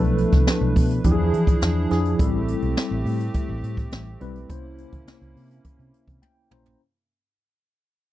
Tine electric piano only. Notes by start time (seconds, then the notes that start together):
Already playing: F3 B3 D4 A4
1.04 F3 D4 E4 G4
1.12 G#4
1.90 F3 D4 E4 G#4
2.19 G3 C4 E4 A4
4.20 G3 C4 E4 B4
4.49 A#3 C#4 E4 C5
6.22 G5
6.51 A#3 C#4 E4 C5 A#5